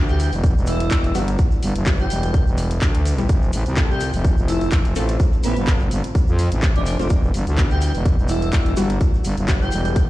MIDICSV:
0, 0, Header, 1, 6, 480
1, 0, Start_track
1, 0, Key_signature, 1, "minor"
1, 0, Tempo, 476190
1, 1400, Time_signature, 4, 2, 24, 8
1, 10177, End_track
2, 0, Start_track
2, 0, Title_t, "Analog synth pad"
2, 0, Program_c, 0, 89
2, 0, Note_on_c, 0, 55, 89
2, 0, Note_on_c, 0, 64, 77
2, 0, Note_on_c, 0, 71, 96
2, 0, Note_on_c, 0, 78, 78
2, 3280, Note_off_c, 0, 78, 0
2, 3282, Note_off_c, 0, 55, 0
2, 3282, Note_off_c, 0, 64, 0
2, 3282, Note_off_c, 0, 71, 0
2, 3320, Note_on_c, 0, 57, 82
2, 3320, Note_on_c, 0, 60, 79
2, 3320, Note_on_c, 0, 72, 94
2, 3321, Note_on_c, 0, 65, 80
2, 7121, Note_off_c, 0, 72, 0
2, 7122, Note_off_c, 0, 57, 0
2, 7122, Note_off_c, 0, 60, 0
2, 7122, Note_off_c, 0, 65, 0
2, 7159, Note_on_c, 0, 64, 78
2, 7160, Note_on_c, 0, 55, 85
2, 7160, Note_on_c, 0, 71, 95
2, 7160, Note_on_c, 0, 78, 80
2, 9060, Note_off_c, 0, 71, 0
2, 9080, Note_on_c, 0, 69, 93
2, 10177, Note_off_c, 0, 55, 0
2, 10177, Note_off_c, 0, 64, 0
2, 10177, Note_off_c, 0, 69, 0
2, 10177, Note_off_c, 0, 78, 0
2, 10177, End_track
3, 0, Start_track
3, 0, Title_t, "Digital synth lead"
3, 0, Program_c, 1, 84
3, 90, Note_on_c, 1, 67, 93
3, 286, Note_off_c, 1, 67, 0
3, 679, Note_on_c, 1, 64, 97
3, 1160, Note_off_c, 1, 64, 0
3, 2010, Note_on_c, 1, 67, 101
3, 2359, Note_off_c, 1, 67, 0
3, 3931, Note_on_c, 1, 67, 96
3, 4126, Note_off_c, 1, 67, 0
3, 4520, Note_on_c, 1, 64, 93
3, 4723, Note_off_c, 1, 64, 0
3, 5480, Note_on_c, 1, 59, 93
3, 5683, Note_off_c, 1, 59, 0
3, 6810, Note_on_c, 1, 62, 87
3, 6880, Note_off_c, 1, 62, 0
3, 6919, Note_on_c, 1, 62, 76
3, 7003, Note_off_c, 1, 62, 0
3, 7771, Note_on_c, 1, 67, 97
3, 7966, Note_off_c, 1, 67, 0
3, 8360, Note_on_c, 1, 64, 99
3, 8840, Note_off_c, 1, 64, 0
3, 9691, Note_on_c, 1, 67, 99
3, 10040, Note_off_c, 1, 67, 0
3, 10177, End_track
4, 0, Start_track
4, 0, Title_t, "Synth stab"
4, 0, Program_c, 2, 62
4, 0, Note_on_c, 2, 55, 91
4, 0, Note_on_c, 2, 59, 84
4, 0, Note_on_c, 2, 64, 84
4, 0, Note_on_c, 2, 66, 101
4, 114, Note_off_c, 2, 55, 0
4, 114, Note_off_c, 2, 59, 0
4, 114, Note_off_c, 2, 64, 0
4, 114, Note_off_c, 2, 66, 0
4, 1159, Note_on_c, 2, 55, 99
4, 1159, Note_on_c, 2, 59, 93
4, 1159, Note_on_c, 2, 64, 92
4, 1159, Note_on_c, 2, 66, 110
4, 1314, Note_off_c, 2, 55, 0
4, 1314, Note_off_c, 2, 59, 0
4, 1314, Note_off_c, 2, 64, 0
4, 1314, Note_off_c, 2, 66, 0
4, 1879, Note_on_c, 2, 55, 80
4, 1879, Note_on_c, 2, 59, 76
4, 1879, Note_on_c, 2, 64, 73
4, 1879, Note_on_c, 2, 66, 89
4, 1979, Note_off_c, 2, 55, 0
4, 1979, Note_off_c, 2, 59, 0
4, 1979, Note_off_c, 2, 64, 0
4, 1979, Note_off_c, 2, 66, 0
4, 3210, Note_on_c, 2, 55, 79
4, 3210, Note_on_c, 2, 59, 69
4, 3210, Note_on_c, 2, 64, 72
4, 3210, Note_on_c, 2, 67, 83
4, 3294, Note_off_c, 2, 55, 0
4, 3294, Note_off_c, 2, 59, 0
4, 3294, Note_off_c, 2, 64, 0
4, 3294, Note_off_c, 2, 67, 0
4, 3800, Note_on_c, 2, 57, 92
4, 3800, Note_on_c, 2, 60, 84
4, 3800, Note_on_c, 2, 65, 87
4, 3800, Note_on_c, 2, 69, 104
4, 3954, Note_off_c, 2, 57, 0
4, 3954, Note_off_c, 2, 60, 0
4, 3954, Note_off_c, 2, 65, 0
4, 3955, Note_off_c, 2, 69, 0
4, 4999, Note_on_c, 2, 57, 99
4, 4999, Note_on_c, 2, 60, 91
4, 4999, Note_on_c, 2, 65, 88
4, 4999, Note_on_c, 2, 69, 110
4, 5154, Note_off_c, 2, 57, 0
4, 5154, Note_off_c, 2, 60, 0
4, 5154, Note_off_c, 2, 65, 0
4, 5154, Note_off_c, 2, 69, 0
4, 5719, Note_on_c, 2, 57, 80
4, 5719, Note_on_c, 2, 60, 75
4, 5719, Note_on_c, 2, 65, 75
4, 5720, Note_on_c, 2, 69, 89
4, 5819, Note_off_c, 2, 57, 0
4, 5819, Note_off_c, 2, 60, 0
4, 5819, Note_off_c, 2, 65, 0
4, 5819, Note_off_c, 2, 69, 0
4, 7050, Note_on_c, 2, 57, 74
4, 7050, Note_on_c, 2, 65, 72
4, 7051, Note_on_c, 2, 60, 71
4, 7051, Note_on_c, 2, 72, 85
4, 7134, Note_off_c, 2, 57, 0
4, 7134, Note_off_c, 2, 60, 0
4, 7134, Note_off_c, 2, 65, 0
4, 7134, Note_off_c, 2, 72, 0
4, 7640, Note_on_c, 2, 55, 90
4, 7640, Note_on_c, 2, 59, 84
4, 7640, Note_on_c, 2, 64, 85
4, 7640, Note_on_c, 2, 66, 102
4, 7794, Note_off_c, 2, 59, 0
4, 7794, Note_off_c, 2, 66, 0
4, 7795, Note_off_c, 2, 55, 0
4, 7795, Note_off_c, 2, 64, 0
4, 8840, Note_on_c, 2, 55, 104
4, 8840, Note_on_c, 2, 59, 88
4, 8840, Note_on_c, 2, 64, 93
4, 8840, Note_on_c, 2, 66, 110
4, 8994, Note_off_c, 2, 55, 0
4, 8994, Note_off_c, 2, 59, 0
4, 8994, Note_off_c, 2, 64, 0
4, 8994, Note_off_c, 2, 66, 0
4, 9560, Note_on_c, 2, 55, 80
4, 9560, Note_on_c, 2, 59, 77
4, 9560, Note_on_c, 2, 64, 75
4, 9560, Note_on_c, 2, 66, 93
4, 9659, Note_off_c, 2, 55, 0
4, 9659, Note_off_c, 2, 59, 0
4, 9659, Note_off_c, 2, 64, 0
4, 9659, Note_off_c, 2, 66, 0
4, 10177, End_track
5, 0, Start_track
5, 0, Title_t, "FM bass"
5, 0, Program_c, 3, 39
5, 0, Note_on_c, 3, 38, 99
5, 309, Note_off_c, 3, 38, 0
5, 330, Note_on_c, 3, 28, 96
5, 549, Note_off_c, 3, 28, 0
5, 570, Note_on_c, 3, 28, 97
5, 902, Note_off_c, 3, 28, 0
5, 919, Note_on_c, 3, 28, 92
5, 1142, Note_off_c, 3, 28, 0
5, 1159, Note_on_c, 3, 31, 98
5, 1382, Note_off_c, 3, 31, 0
5, 1639, Note_on_c, 3, 31, 95
5, 1749, Note_off_c, 3, 31, 0
5, 1770, Note_on_c, 3, 30, 98
5, 2102, Note_off_c, 3, 30, 0
5, 2119, Note_on_c, 3, 28, 99
5, 2469, Note_off_c, 3, 28, 0
5, 2490, Note_on_c, 3, 28, 99
5, 2822, Note_off_c, 3, 28, 0
5, 2839, Note_on_c, 3, 38, 93
5, 3302, Note_off_c, 3, 38, 0
5, 3319, Note_on_c, 3, 29, 100
5, 3542, Note_off_c, 3, 29, 0
5, 3560, Note_on_c, 3, 33, 99
5, 3670, Note_off_c, 3, 33, 0
5, 3690, Note_on_c, 3, 36, 98
5, 4149, Note_off_c, 3, 36, 0
5, 4170, Note_on_c, 3, 29, 97
5, 4389, Note_off_c, 3, 29, 0
5, 4410, Note_on_c, 3, 29, 102
5, 4742, Note_off_c, 3, 29, 0
5, 4759, Note_on_c, 3, 29, 93
5, 4982, Note_off_c, 3, 29, 0
5, 4999, Note_on_c, 3, 33, 99
5, 5222, Note_off_c, 3, 33, 0
5, 5479, Note_on_c, 3, 33, 97
5, 5589, Note_off_c, 3, 33, 0
5, 5610, Note_on_c, 3, 31, 98
5, 5942, Note_off_c, 3, 31, 0
5, 5959, Note_on_c, 3, 31, 98
5, 6069, Note_off_c, 3, 31, 0
5, 6330, Note_on_c, 3, 41, 99
5, 6549, Note_off_c, 3, 41, 0
5, 6570, Note_on_c, 3, 33, 99
5, 6789, Note_off_c, 3, 33, 0
5, 6810, Note_on_c, 3, 29, 102
5, 7029, Note_off_c, 3, 29, 0
5, 7050, Note_on_c, 3, 29, 93
5, 7142, Note_off_c, 3, 29, 0
5, 7160, Note_on_c, 3, 28, 98
5, 7382, Note_off_c, 3, 28, 0
5, 7399, Note_on_c, 3, 31, 94
5, 7509, Note_off_c, 3, 31, 0
5, 7530, Note_on_c, 3, 38, 94
5, 7989, Note_off_c, 3, 38, 0
5, 8010, Note_on_c, 3, 28, 96
5, 8229, Note_off_c, 3, 28, 0
5, 8250, Note_on_c, 3, 28, 98
5, 8582, Note_off_c, 3, 28, 0
5, 8599, Note_on_c, 3, 28, 98
5, 8822, Note_off_c, 3, 28, 0
5, 8840, Note_on_c, 3, 31, 98
5, 9062, Note_off_c, 3, 31, 0
5, 9319, Note_on_c, 3, 31, 98
5, 9429, Note_off_c, 3, 31, 0
5, 9450, Note_on_c, 3, 30, 99
5, 9782, Note_off_c, 3, 30, 0
5, 9800, Note_on_c, 3, 28, 98
5, 10150, Note_off_c, 3, 28, 0
5, 10177, End_track
6, 0, Start_track
6, 0, Title_t, "Drums"
6, 85, Note_on_c, 9, 82, 28
6, 185, Note_off_c, 9, 82, 0
6, 198, Note_on_c, 9, 82, 97
6, 199, Note_on_c, 9, 46, 109
6, 299, Note_off_c, 9, 82, 0
6, 300, Note_off_c, 9, 46, 0
6, 326, Note_on_c, 9, 82, 44
6, 330, Note_on_c, 9, 46, 62
6, 427, Note_off_c, 9, 82, 0
6, 431, Note_off_c, 9, 46, 0
6, 439, Note_on_c, 9, 36, 123
6, 439, Note_on_c, 9, 42, 73
6, 443, Note_on_c, 9, 82, 57
6, 540, Note_off_c, 9, 36, 0
6, 540, Note_off_c, 9, 42, 0
6, 544, Note_off_c, 9, 82, 0
6, 582, Note_on_c, 9, 82, 28
6, 670, Note_off_c, 9, 82, 0
6, 670, Note_on_c, 9, 82, 86
6, 679, Note_on_c, 9, 46, 109
6, 771, Note_off_c, 9, 82, 0
6, 780, Note_off_c, 9, 46, 0
6, 810, Note_on_c, 9, 42, 58
6, 813, Note_on_c, 9, 82, 37
6, 911, Note_off_c, 9, 42, 0
6, 914, Note_off_c, 9, 82, 0
6, 915, Note_on_c, 9, 82, 49
6, 917, Note_on_c, 9, 39, 123
6, 919, Note_on_c, 9, 36, 105
6, 919, Note_on_c, 9, 42, 71
6, 1016, Note_off_c, 9, 82, 0
6, 1018, Note_off_c, 9, 39, 0
6, 1020, Note_off_c, 9, 36, 0
6, 1020, Note_off_c, 9, 42, 0
6, 1050, Note_on_c, 9, 42, 64
6, 1051, Note_on_c, 9, 82, 25
6, 1151, Note_off_c, 9, 42, 0
6, 1152, Note_off_c, 9, 82, 0
6, 1158, Note_on_c, 9, 82, 88
6, 1159, Note_on_c, 9, 46, 105
6, 1259, Note_off_c, 9, 82, 0
6, 1260, Note_off_c, 9, 46, 0
6, 1289, Note_on_c, 9, 82, 39
6, 1290, Note_on_c, 9, 42, 56
6, 1389, Note_off_c, 9, 82, 0
6, 1391, Note_off_c, 9, 42, 0
6, 1398, Note_on_c, 9, 82, 55
6, 1399, Note_on_c, 9, 36, 121
6, 1399, Note_on_c, 9, 42, 68
6, 1499, Note_off_c, 9, 82, 0
6, 1500, Note_off_c, 9, 36, 0
6, 1500, Note_off_c, 9, 42, 0
6, 1523, Note_on_c, 9, 82, 29
6, 1624, Note_off_c, 9, 82, 0
6, 1639, Note_on_c, 9, 46, 110
6, 1641, Note_on_c, 9, 82, 93
6, 1740, Note_off_c, 9, 46, 0
6, 1742, Note_off_c, 9, 82, 0
6, 1768, Note_on_c, 9, 82, 39
6, 1770, Note_on_c, 9, 42, 53
6, 1869, Note_off_c, 9, 82, 0
6, 1871, Note_off_c, 9, 42, 0
6, 1875, Note_on_c, 9, 82, 50
6, 1877, Note_on_c, 9, 39, 123
6, 1879, Note_on_c, 9, 36, 109
6, 1879, Note_on_c, 9, 42, 69
6, 1976, Note_off_c, 9, 82, 0
6, 1978, Note_off_c, 9, 39, 0
6, 1980, Note_off_c, 9, 36, 0
6, 1980, Note_off_c, 9, 42, 0
6, 2007, Note_on_c, 9, 82, 25
6, 2108, Note_off_c, 9, 82, 0
6, 2119, Note_on_c, 9, 46, 109
6, 2125, Note_on_c, 9, 82, 93
6, 2220, Note_off_c, 9, 46, 0
6, 2226, Note_off_c, 9, 82, 0
6, 2250, Note_on_c, 9, 42, 51
6, 2251, Note_on_c, 9, 82, 40
6, 2351, Note_off_c, 9, 42, 0
6, 2352, Note_off_c, 9, 82, 0
6, 2357, Note_on_c, 9, 82, 57
6, 2359, Note_on_c, 9, 36, 124
6, 2359, Note_on_c, 9, 42, 68
6, 2458, Note_off_c, 9, 82, 0
6, 2460, Note_off_c, 9, 36, 0
6, 2460, Note_off_c, 9, 42, 0
6, 2490, Note_on_c, 9, 82, 32
6, 2591, Note_off_c, 9, 82, 0
6, 2597, Note_on_c, 9, 82, 102
6, 2599, Note_on_c, 9, 46, 110
6, 2698, Note_off_c, 9, 82, 0
6, 2700, Note_off_c, 9, 46, 0
6, 2730, Note_on_c, 9, 42, 55
6, 2733, Note_on_c, 9, 82, 38
6, 2831, Note_off_c, 9, 42, 0
6, 2834, Note_off_c, 9, 82, 0
6, 2837, Note_on_c, 9, 39, 125
6, 2839, Note_on_c, 9, 36, 112
6, 2839, Note_on_c, 9, 42, 68
6, 2844, Note_on_c, 9, 82, 57
6, 2938, Note_off_c, 9, 39, 0
6, 2940, Note_off_c, 9, 36, 0
6, 2940, Note_off_c, 9, 42, 0
6, 2945, Note_off_c, 9, 82, 0
6, 2970, Note_on_c, 9, 42, 64
6, 2973, Note_on_c, 9, 82, 28
6, 3071, Note_off_c, 9, 42, 0
6, 3074, Note_off_c, 9, 82, 0
6, 3079, Note_on_c, 9, 46, 108
6, 3089, Note_on_c, 9, 82, 100
6, 3180, Note_off_c, 9, 46, 0
6, 3190, Note_off_c, 9, 82, 0
6, 3210, Note_on_c, 9, 42, 55
6, 3210, Note_on_c, 9, 82, 43
6, 3310, Note_off_c, 9, 42, 0
6, 3311, Note_off_c, 9, 82, 0
6, 3318, Note_on_c, 9, 82, 57
6, 3319, Note_on_c, 9, 36, 127
6, 3319, Note_on_c, 9, 42, 67
6, 3419, Note_off_c, 9, 82, 0
6, 3420, Note_off_c, 9, 36, 0
6, 3420, Note_off_c, 9, 42, 0
6, 3451, Note_on_c, 9, 82, 30
6, 3551, Note_off_c, 9, 82, 0
6, 3556, Note_on_c, 9, 82, 87
6, 3559, Note_on_c, 9, 46, 116
6, 3657, Note_off_c, 9, 82, 0
6, 3660, Note_off_c, 9, 46, 0
6, 3689, Note_on_c, 9, 82, 42
6, 3690, Note_on_c, 9, 42, 52
6, 3790, Note_off_c, 9, 82, 0
6, 3791, Note_off_c, 9, 42, 0
6, 3797, Note_on_c, 9, 39, 124
6, 3797, Note_on_c, 9, 82, 57
6, 3799, Note_on_c, 9, 36, 113
6, 3799, Note_on_c, 9, 42, 63
6, 3898, Note_off_c, 9, 39, 0
6, 3898, Note_off_c, 9, 82, 0
6, 3900, Note_off_c, 9, 36, 0
6, 3900, Note_off_c, 9, 42, 0
6, 3940, Note_on_c, 9, 82, 27
6, 4035, Note_off_c, 9, 82, 0
6, 4035, Note_on_c, 9, 82, 92
6, 4039, Note_on_c, 9, 46, 116
6, 4136, Note_off_c, 9, 82, 0
6, 4140, Note_off_c, 9, 46, 0
6, 4163, Note_on_c, 9, 82, 44
6, 4170, Note_on_c, 9, 46, 65
6, 4264, Note_off_c, 9, 82, 0
6, 4271, Note_off_c, 9, 46, 0
6, 4279, Note_on_c, 9, 36, 127
6, 4279, Note_on_c, 9, 42, 64
6, 4281, Note_on_c, 9, 82, 53
6, 4380, Note_off_c, 9, 36, 0
6, 4380, Note_off_c, 9, 42, 0
6, 4382, Note_off_c, 9, 82, 0
6, 4410, Note_on_c, 9, 82, 31
6, 4510, Note_off_c, 9, 82, 0
6, 4519, Note_on_c, 9, 46, 117
6, 4521, Note_on_c, 9, 82, 99
6, 4620, Note_off_c, 9, 46, 0
6, 4622, Note_off_c, 9, 82, 0
6, 4650, Note_on_c, 9, 42, 55
6, 4654, Note_on_c, 9, 82, 42
6, 4751, Note_off_c, 9, 42, 0
6, 4754, Note_off_c, 9, 82, 0
6, 4757, Note_on_c, 9, 39, 122
6, 4757, Note_on_c, 9, 82, 50
6, 4759, Note_on_c, 9, 36, 115
6, 4759, Note_on_c, 9, 42, 64
6, 4857, Note_off_c, 9, 39, 0
6, 4857, Note_off_c, 9, 82, 0
6, 4860, Note_off_c, 9, 36, 0
6, 4860, Note_off_c, 9, 42, 0
6, 4890, Note_on_c, 9, 42, 62
6, 4893, Note_on_c, 9, 82, 28
6, 4991, Note_off_c, 9, 42, 0
6, 4994, Note_off_c, 9, 82, 0
6, 4994, Note_on_c, 9, 82, 95
6, 4999, Note_on_c, 9, 46, 111
6, 5095, Note_off_c, 9, 82, 0
6, 5100, Note_off_c, 9, 46, 0
6, 5125, Note_on_c, 9, 82, 44
6, 5130, Note_on_c, 9, 42, 53
6, 5226, Note_off_c, 9, 82, 0
6, 5231, Note_off_c, 9, 42, 0
6, 5239, Note_on_c, 9, 36, 126
6, 5239, Note_on_c, 9, 42, 63
6, 5242, Note_on_c, 9, 82, 61
6, 5340, Note_off_c, 9, 36, 0
6, 5340, Note_off_c, 9, 42, 0
6, 5343, Note_off_c, 9, 82, 0
6, 5367, Note_on_c, 9, 82, 27
6, 5468, Note_off_c, 9, 82, 0
6, 5478, Note_on_c, 9, 82, 101
6, 5479, Note_on_c, 9, 46, 112
6, 5578, Note_off_c, 9, 82, 0
6, 5580, Note_off_c, 9, 46, 0
6, 5607, Note_on_c, 9, 82, 35
6, 5610, Note_on_c, 9, 42, 50
6, 5708, Note_off_c, 9, 82, 0
6, 5711, Note_off_c, 9, 42, 0
6, 5717, Note_on_c, 9, 39, 122
6, 5719, Note_on_c, 9, 36, 113
6, 5719, Note_on_c, 9, 42, 62
6, 5722, Note_on_c, 9, 82, 49
6, 5818, Note_off_c, 9, 39, 0
6, 5820, Note_off_c, 9, 36, 0
6, 5820, Note_off_c, 9, 42, 0
6, 5822, Note_off_c, 9, 82, 0
6, 5843, Note_on_c, 9, 82, 27
6, 5944, Note_off_c, 9, 82, 0
6, 5959, Note_on_c, 9, 46, 109
6, 5963, Note_on_c, 9, 82, 93
6, 6060, Note_off_c, 9, 46, 0
6, 6064, Note_off_c, 9, 82, 0
6, 6090, Note_on_c, 9, 42, 48
6, 6090, Note_on_c, 9, 82, 41
6, 6190, Note_off_c, 9, 82, 0
6, 6191, Note_off_c, 9, 42, 0
6, 6199, Note_on_c, 9, 42, 65
6, 6200, Note_on_c, 9, 36, 127
6, 6208, Note_on_c, 9, 82, 50
6, 6300, Note_off_c, 9, 36, 0
6, 6300, Note_off_c, 9, 42, 0
6, 6309, Note_off_c, 9, 82, 0
6, 6324, Note_on_c, 9, 82, 30
6, 6425, Note_off_c, 9, 82, 0
6, 6439, Note_on_c, 9, 46, 114
6, 6439, Note_on_c, 9, 82, 98
6, 6540, Note_off_c, 9, 46, 0
6, 6540, Note_off_c, 9, 82, 0
6, 6568, Note_on_c, 9, 82, 41
6, 6570, Note_on_c, 9, 42, 53
6, 6668, Note_off_c, 9, 82, 0
6, 6671, Note_off_c, 9, 42, 0
6, 6677, Note_on_c, 9, 39, 116
6, 6679, Note_on_c, 9, 42, 60
6, 6680, Note_on_c, 9, 36, 114
6, 6684, Note_on_c, 9, 82, 51
6, 6778, Note_off_c, 9, 39, 0
6, 6780, Note_off_c, 9, 36, 0
6, 6780, Note_off_c, 9, 42, 0
6, 6785, Note_off_c, 9, 82, 0
6, 6810, Note_on_c, 9, 42, 60
6, 6810, Note_on_c, 9, 82, 26
6, 6911, Note_off_c, 9, 42, 0
6, 6911, Note_off_c, 9, 82, 0
6, 6913, Note_on_c, 9, 82, 88
6, 6920, Note_on_c, 9, 46, 109
6, 7014, Note_off_c, 9, 82, 0
6, 7020, Note_off_c, 9, 46, 0
6, 7051, Note_on_c, 9, 42, 51
6, 7059, Note_on_c, 9, 82, 42
6, 7151, Note_off_c, 9, 42, 0
6, 7152, Note_off_c, 9, 82, 0
6, 7152, Note_on_c, 9, 82, 58
6, 7160, Note_on_c, 9, 36, 120
6, 7160, Note_on_c, 9, 42, 65
6, 7253, Note_off_c, 9, 82, 0
6, 7260, Note_off_c, 9, 36, 0
6, 7260, Note_off_c, 9, 42, 0
6, 7293, Note_on_c, 9, 82, 27
6, 7394, Note_off_c, 9, 82, 0
6, 7400, Note_on_c, 9, 46, 110
6, 7410, Note_on_c, 9, 82, 89
6, 7500, Note_off_c, 9, 46, 0
6, 7511, Note_off_c, 9, 82, 0
6, 7530, Note_on_c, 9, 42, 50
6, 7533, Note_on_c, 9, 82, 34
6, 7631, Note_off_c, 9, 42, 0
6, 7634, Note_off_c, 9, 82, 0
6, 7637, Note_on_c, 9, 39, 117
6, 7639, Note_on_c, 9, 42, 63
6, 7640, Note_on_c, 9, 36, 110
6, 7640, Note_on_c, 9, 82, 55
6, 7738, Note_off_c, 9, 39, 0
6, 7740, Note_off_c, 9, 36, 0
6, 7740, Note_off_c, 9, 42, 0
6, 7741, Note_off_c, 9, 82, 0
6, 7765, Note_on_c, 9, 82, 29
6, 7866, Note_off_c, 9, 82, 0
6, 7875, Note_on_c, 9, 82, 91
6, 7879, Note_on_c, 9, 46, 107
6, 7976, Note_off_c, 9, 82, 0
6, 7980, Note_off_c, 9, 46, 0
6, 8009, Note_on_c, 9, 82, 38
6, 8010, Note_on_c, 9, 46, 62
6, 8110, Note_off_c, 9, 82, 0
6, 8111, Note_off_c, 9, 46, 0
6, 8119, Note_on_c, 9, 36, 122
6, 8120, Note_on_c, 9, 42, 63
6, 8124, Note_on_c, 9, 82, 54
6, 8220, Note_off_c, 9, 36, 0
6, 8220, Note_off_c, 9, 42, 0
6, 8225, Note_off_c, 9, 82, 0
6, 8253, Note_on_c, 9, 82, 27
6, 8348, Note_off_c, 9, 82, 0
6, 8348, Note_on_c, 9, 82, 96
6, 8359, Note_on_c, 9, 46, 104
6, 8448, Note_off_c, 9, 82, 0
6, 8460, Note_off_c, 9, 46, 0
6, 8485, Note_on_c, 9, 82, 41
6, 8490, Note_on_c, 9, 42, 54
6, 8586, Note_off_c, 9, 82, 0
6, 8591, Note_off_c, 9, 42, 0
6, 8595, Note_on_c, 9, 82, 52
6, 8598, Note_on_c, 9, 39, 116
6, 8599, Note_on_c, 9, 36, 108
6, 8600, Note_on_c, 9, 42, 62
6, 8696, Note_off_c, 9, 82, 0
6, 8698, Note_off_c, 9, 39, 0
6, 8700, Note_off_c, 9, 36, 0
6, 8700, Note_off_c, 9, 42, 0
6, 8725, Note_on_c, 9, 82, 28
6, 8730, Note_on_c, 9, 42, 61
6, 8826, Note_off_c, 9, 82, 0
6, 8831, Note_off_c, 9, 42, 0
6, 8836, Note_on_c, 9, 82, 98
6, 8839, Note_on_c, 9, 46, 106
6, 8937, Note_off_c, 9, 82, 0
6, 8940, Note_off_c, 9, 46, 0
6, 8966, Note_on_c, 9, 82, 38
6, 8970, Note_on_c, 9, 42, 52
6, 9067, Note_off_c, 9, 82, 0
6, 9071, Note_off_c, 9, 42, 0
6, 9079, Note_on_c, 9, 36, 115
6, 9080, Note_on_c, 9, 42, 68
6, 9080, Note_on_c, 9, 82, 48
6, 9180, Note_off_c, 9, 36, 0
6, 9181, Note_off_c, 9, 42, 0
6, 9181, Note_off_c, 9, 82, 0
6, 9212, Note_on_c, 9, 82, 28
6, 9313, Note_off_c, 9, 82, 0
6, 9317, Note_on_c, 9, 82, 93
6, 9320, Note_on_c, 9, 46, 104
6, 9418, Note_off_c, 9, 82, 0
6, 9421, Note_off_c, 9, 46, 0
6, 9450, Note_on_c, 9, 42, 52
6, 9451, Note_on_c, 9, 82, 39
6, 9551, Note_off_c, 9, 42, 0
6, 9552, Note_off_c, 9, 82, 0
6, 9557, Note_on_c, 9, 39, 111
6, 9558, Note_on_c, 9, 82, 47
6, 9560, Note_on_c, 9, 36, 108
6, 9560, Note_on_c, 9, 42, 68
6, 9658, Note_off_c, 9, 39, 0
6, 9659, Note_off_c, 9, 82, 0
6, 9660, Note_off_c, 9, 36, 0
6, 9660, Note_off_c, 9, 42, 0
6, 9697, Note_on_c, 9, 82, 27
6, 9793, Note_off_c, 9, 82, 0
6, 9793, Note_on_c, 9, 82, 89
6, 9799, Note_on_c, 9, 46, 101
6, 9893, Note_off_c, 9, 82, 0
6, 9900, Note_off_c, 9, 46, 0
6, 9930, Note_on_c, 9, 42, 54
6, 9931, Note_on_c, 9, 82, 40
6, 10031, Note_off_c, 9, 42, 0
6, 10032, Note_off_c, 9, 82, 0
6, 10039, Note_on_c, 9, 42, 66
6, 10040, Note_on_c, 9, 36, 120
6, 10041, Note_on_c, 9, 82, 55
6, 10140, Note_off_c, 9, 36, 0
6, 10140, Note_off_c, 9, 42, 0
6, 10142, Note_off_c, 9, 82, 0
6, 10177, End_track
0, 0, End_of_file